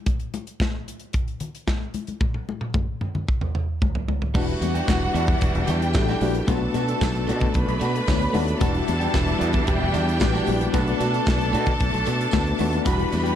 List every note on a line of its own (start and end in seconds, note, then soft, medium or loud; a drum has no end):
0.06 kick medium
0.06 closed hi-hat medium
0.06 muted conga soft
0.20 closed hi-hat soft
0.34 closed hi-hat medium
0.34 muted conga medium
0.47 closed hi-hat soft
0.60 kick loud
0.60 snare loud
0.60 clap medium
0.60 high conga medium
0.88 closed hi-hat medium
1.00 closed hi-hat soft
1.13 kick loud
1.13 closed hi-hat medium
1.28 closed hi-hat soft
1.40 closed hi-hat medium
1.40 low conga medium
1.55 closed hi-hat soft
1.67 kick medium
1.67 snare medium
1.67 clap medium
1.67 high conga medium
1.94 closed hi-hat medium
1.94 high conga medium
2.07 closed hi-hat soft
2.07 high conga soft
2.21 kick loud
2.21 high tom medium
2.21 muted conga medium
2.34 high tom soft
2.49 muted conga medium
2.61 high tom medium
2.74 kick loud
2.74 mid tom medium
2.74 high conga medium
3.01 mid tom medium
3.01 muted conga soft
3.15 mid tom medium
3.15 low conga medium
3.29 kick loud
3.41 mid tom medium
3.55 mid tom medium
3.82 kick loud
3.82 floor tom medium
3.82 high conga medium
3.95 floor tom medium
4.08 floor tom medium
4.08 high conga medium
4.22 floor tom medium
4.34 4.53 E1 loud
4.34 6.46 E3 medium
4.34 4.51 G3 medium
4.34 6.46 G3 medium
4.34 5.02 G3 loud
4.34 12.82 B3 medium
4.34 4.48 D4 loud
4.34 5.02 D4 medium
4.34 6.46 D4 medium
4.34 6.46 E4 medium
4.34 5.02 E4 medium
4.34 5.02 F#4 medium
4.34 4.46 F#4 loud
4.34 5.66 F#4 medium
4.34 5.02 B4 loud
4.34 5.66 F#5 loud
4.34 kick loud
4.34 crash loud
4.34 tambourine medium
4.34 muted conga medium
4.47 muted clean electric guitar stroke soft
4.47 closed hi-hat soft
4.61 4.80 E2 loud
4.61 muted clean electric guitar stroke soft
4.61 closed hi-hat medium
4.61 tambourine medium
4.61 muted conga medium
4.75 4.88 G3 medium
4.75 4.88 D4 medium
4.75 4.87 G4 medium
4.75 closed hi-hat soft
4.88 5.07 E1 medium
4.88 kick loud
4.88 snare loud
4.88 clap loud
4.88 tambourine loud
4.88 high conga medium
5.02 muted clean electric guitar stroke soft
5.14 5.33 E2 loud
5.14 5.31 G3 medium
5.14 5.28 D4 loud
5.14 5.26 F#4 loud
5.14 closed hi-hat medium
5.14 muted conga soft
5.27 muted clean electric guitar stroke soft
5.27 kick loud
5.27 closed hi-hat soft
5.41 5.51 E1 medium
5.41 muted clean electric guitar stroke medium
5.41 kick loud
5.41 closed hi-hat medium
5.55 5.64 E1 loud
5.55 muted clean electric guitar stroke soft
5.55 closed hi-hat soft
5.67 5.96 E2 loud
5.67 5.84 G3 medium
5.67 5.82 D4 medium
5.67 5.80 F#4 medium
5.67 6.47 G4 medium
5.67 6.47 G5 medium
5.67 closed hi-hat medium
5.67 tambourine medium
5.67 low conga medium
5.82 muted clean electric guitar stroke medium
5.82 closed hi-hat soft
5.93 6.13 A1 loud
5.93 6.11 G3 medium
5.93 6.11 D4 medium
5.93 6.12 E4 medium
5.93 6.12 F#4 medium
5.93 6.12 A4 medium
5.93 muted clean electric guitar stroke soft
5.93 kick loud
5.93 snare loud
5.93 clap medium
5.93 tambourine loud
5.93 high conga medium
6.08 6.20 G3 medium
6.08 6.21 D4 medium
6.08 6.22 F#4 medium
6.08 snare soft
6.08 closed hi-hat soft
6.21 6.40 A#1 loud
6.21 6.38 G3 medium
6.21 6.34 G3 medium
6.21 6.38 D4 medium
6.21 6.35 D4 medium
6.21 6.38 E4 medium
6.21 6.38 F#4 medium
6.21 6.34 F#4 medium
6.21 6.39 B4 loud
6.21 open hi-hat medium
6.21 tambourine medium
6.21 high conga medium
6.35 muted clean electric guitar stroke soft
6.35 closed hi-hat soft
6.47 6.66 B1 loud
6.47 6.68 A3 medium
6.47 7.14 A3 loud
6.47 8.60 A3 medium
6.47 7.15 B3 medium
6.47 7.15 D4 medium
6.47 6.62 D4 medium
6.47 13.35 D4 loud
6.47 7.15 F#4 medium
6.47 6.60 F#4 medium
6.47 7.53 A4 medium
6.47 7.15 B4 loud
6.47 7.53 A5 medium
6.47 kick loud
6.47 closed hi-hat loud
6.47 tambourine medium
6.47 muted conga medium
6.61 muted clean electric guitar stroke medium
6.74 6.93 B2 loud
6.74 6.87 A3 medium
6.74 6.87 D4 medium
6.74 6.87 F#4 medium
6.74 closed hi-hat medium
6.74 tambourine medium
6.74 muted conga medium
6.87 7.01 A3 medium
6.87 7.01 D4 medium
6.87 7.00 A4 medium
6.87 closed hi-hat soft
7.01 7.30 B1 loud
7.01 kick loud
7.01 snare loud
7.01 clap loud
7.01 tambourine loud
7.01 high conga medium
7.14 muted clean electric guitar stroke soft
7.14 closed hi-hat soft
7.27 7.47 B2 loud
7.27 7.44 A3 medium
7.27 7.41 D4 loud
7.27 7.39 F#4 loud
7.27 closed hi-hat medium
7.27 tambourine soft
7.27 muted conga soft
7.40 muted clean electric guitar stroke soft
7.40 kick loud
7.40 closed hi-hat soft
7.40 low conga medium
7.54 7.64 B1 loud
7.54 8.59 B4 loud
7.54 8.59 B5 loud
7.54 muted clean electric guitar stroke medium
7.54 kick loud
7.54 closed hi-hat medium
7.67 7.77 B1 loud
7.67 muted clean electric guitar stroke medium
7.67 closed hi-hat soft
7.80 7.99 B2 loud
7.80 7.97 A3 medium
7.80 7.93 D4 medium
7.80 7.92 F#4 loud
7.80 closed hi-hat medium
7.80 tambourine medium
7.93 muted clean electric guitar stroke medium
7.93 closed hi-hat soft
8.07 8.26 D2 loud
8.07 8.24 A3 medium
8.07 8.24 B3 medium
8.07 8.25 D4 medium
8.07 8.25 F#4 medium
8.07 8.25 C#5 medium
8.07 kick loud
8.07 snare loud
8.07 clap medium
8.07 tambourine loud
8.07 high conga medium
8.20 muted clean electric guitar stroke soft
8.20 closed hi-hat soft
8.33 8.53 D#2 medium
8.33 8.50 A3 medium
8.33 8.51 A3 medium
8.33 8.51 B3 medium
8.33 8.47 D4 loud
8.33 8.51 D4 medium
8.33 8.51 F#4 medium
8.33 8.45 F#4 medium
8.33 8.51 A4 loud
8.33 open hi-hat medium
8.33 tambourine medium
8.33 high conga medium
8.46 muted clean electric guitar stroke soft
8.46 closed hi-hat soft
8.60 8.79 E1 loud
8.60 10.72 E3 loud
8.60 8.77 G3 medium
8.60 9.27 G3 medium
8.60 10.72 G3 loud
8.60 8.74 D4 medium
8.60 9.28 D4 medium
8.60 9.28 E4 medium
8.60 10.72 E4 medium
8.60 9.28 F#4 medium
8.60 8.73 F#4 medium
8.60 9.66 A4 medium
8.60 9.28 B4 loud
8.60 9.66 A5 loud
8.60 kick loud
8.60 closed hi-hat loud
8.60 tambourine medium
8.60 muted conga medium
8.74 muted clean electric guitar stroke medium
8.74 closed hi-hat soft
8.88 9.06 E2 loud
8.88 muted clean electric guitar stroke soft
8.88 closed hi-hat medium
8.88 tambourine medium
8.88 muted conga medium
9.00 9.14 G3 soft
9.00 9.13 D4 medium
9.00 9.13 G4 medium
9.00 closed hi-hat soft
9.14 9.32 E1 loud
9.14 kick loud
9.14 snare loud
9.14 clap loud
9.14 tambourine loud
9.14 high conga medium
9.26 muted clean electric guitar stroke soft
9.26 closed hi-hat soft
9.39 9.59 E2 loud
9.39 9.56 G3 medium
9.39 9.52 D4 loud
9.39 9.50 F#4 loud
9.39 closed hi-hat medium
9.39 tambourine soft
9.52 muted clean electric guitar stroke medium
9.52 kick medium
9.52 closed hi-hat soft
9.66 9.77 E1 loud
9.66 10.72 G4 medium
9.66 10.72 G5 loud
9.66 muted clean electric guitar stroke soft
9.66 kick loud
9.66 closed hi-hat medium
9.79 9.90 E1 loud
9.79 muted clean electric guitar stroke soft
9.92 10.23 E2 loud
9.92 10.09 G3 medium
9.92 10.06 D4 medium
9.92 10.05 F#4 medium
9.92 closed hi-hat medium
9.92 tambourine medium
9.92 low conga medium
10.07 muted clean electric guitar stroke soft
10.07 closed hi-hat medium
10.20 10.39 A1 loud
10.20 10.37 G3 medium
10.20 10.37 D4 medium
10.20 10.37 E4 medium
10.20 10.37 F#4 medium
10.20 10.38 B4 medium
10.20 muted clean electric guitar stroke soft
10.20 kick loud
10.20 snare loud
10.20 clap loud
10.20 tambourine loud
10.20 high conga medium
10.33 10.45 G3 medium
10.33 10.46 D4 medium
10.33 10.47 F#4 medium
10.33 snare soft
10.33 closed hi-hat soft
10.46 10.66 A#1 loud
10.46 10.59 G3 medium
10.46 10.63 G3 medium
10.46 10.64 D4 medium
10.46 10.60 D4 medium
10.46 10.64 E4 medium
10.46 10.64 F#4 medium
10.46 10.59 F#4 medium
10.46 10.64 B4 loud
10.46 open hi-hat medium
10.46 tambourine medium
10.46 high conga medium
10.60 muted clean electric guitar stroke medium
10.60 closed hi-hat soft
10.73 10.92 B1 loud
10.73 10.89 A3 medium
10.73 11.40 A3 loud
10.73 12.84 A3 medium
10.73 11.40 B3 medium
10.73 10.86 D4 medium
10.73 11.40 D4 medium
10.73 11.41 F#4 medium
10.73 10.85 F#4 loud
10.73 12.82 A4 loud
10.73 11.41 B4 loud
10.73 12.82 A5 loud
10.73 kick loud
10.73 closed hi-hat medium
10.73 tambourine medium
10.73 muted conga medium
10.86 muted clean electric guitar stroke medium
10.86 closed hi-hat soft
10.99 11.19 B2 medium
10.99 11.12 A3 medium
10.99 11.12 D4 medium
10.99 11.12 F#4 medium
10.99 closed hi-hat medium
10.99 tambourine medium
10.99 muted conga medium
11.12 11.26 A3 soft
11.12 11.26 D4 medium
11.12 11.25 A4 medium
11.12 closed hi-hat soft
11.26 11.55 B1 loud
11.26 kick loud
11.26 snare loud
11.26 clap loud
11.26 tambourine medium
11.26 high conga medium
11.40 muted clean electric guitar stroke soft
11.40 closed hi-hat soft
11.52 11.72 B2 loud
11.52 11.69 A3 medium
11.52 11.66 D4 loud
11.52 11.65 F#4 medium
11.52 closed hi-hat medium
11.52 muted conga soft
11.66 muted clean electric guitar stroke soft
11.66 kick medium
11.66 closed hi-hat soft
11.66 low conga medium
11.79 11.89 B1 medium
11.79 muted clean electric guitar stroke soft
11.79 kick loud
11.79 closed hi-hat medium
11.93 12.03 B1 loud
11.93 muted clean electric guitar stroke soft
11.93 closed hi-hat soft
12.06 12.25 B2 loud
12.06 12.23 A3 medium
12.06 12.20 D4 loud
12.06 12.19 F#4 medium
12.06 closed hi-hat medium
12.06 tambourine medium
12.20 muted clean electric guitar stroke medium
12.20 closed hi-hat medium
12.31 12.51 D2 loud
12.31 12.49 A3 medium
12.31 12.49 B3 medium
12.31 12.50 D4 medium
12.31 12.50 F#4 medium
12.31 12.50 B4 medium
12.31 kick loud
12.31 snare loud
12.31 clap medium
12.31 tambourine loud
12.31 high conga medium
12.47 muted clean electric guitar stroke soft
12.47 closed hi-hat soft
12.58 12.78 D#2 loud
12.58 12.75 A3 medium
12.58 12.76 A3 medium
12.58 12.76 B3 medium
12.58 12.76 D4 medium
12.58 12.73 D4 medium
12.58 12.77 F#4 medium
12.58 12.72 F#4 loud
12.58 12.77 B4 medium
12.58 open hi-hat medium
12.58 tambourine medium
12.58 high conga medium
12.73 muted clean electric guitar stroke soft
12.73 closed hi-hat soft
12.85 13.04 E1 loud
12.85 13.35 E3 medium
12.85 13.02 G3 medium
12.85 13.35 G3 medium
12.85 13.35 G3 loud
12.85 13.35 B3 medium
12.85 13.35 D4 medium
12.85 12.99 D4 medium
12.85 13.35 E4 medium
12.85 13.35 F#4 medium
12.85 12.98 F#4 medium
12.85 13.35 B4 loud
12.85 13.35 B4 medium
12.85 13.35 B5 loud
12.85 kick loud
12.85 closed hi-hat loud
12.85 tambourine medium
12.85 muted conga medium
12.99 muted clean electric guitar stroke soft
12.99 closed hi-hat soft
13.11 13.31 E2 loud
13.11 muted clean electric guitar stroke soft
13.11 closed hi-hat medium
13.11 tambourine medium
13.11 muted conga medium
13.24 13.35 G3 medium
13.24 13.35 D4 soft
13.24 13.35 G4 medium
13.24 closed hi-hat soft